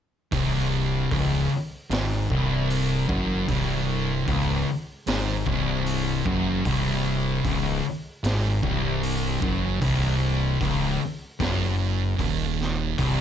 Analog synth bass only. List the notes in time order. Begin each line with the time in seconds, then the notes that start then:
0.32 C1
1.11 C#1
1.90 G#1
2.30 C1
3.09 F#1
3.49 C1
4.28 C#1
5.07 G#1
5.47 C1
6.26 F#1
6.66 C1
7.44 C#1
8.23 G#1
8.63 C1
9.43 F#1
9.82 C1
10.61 C#1
11.40 F#1
12.19 D#1
12.98 C1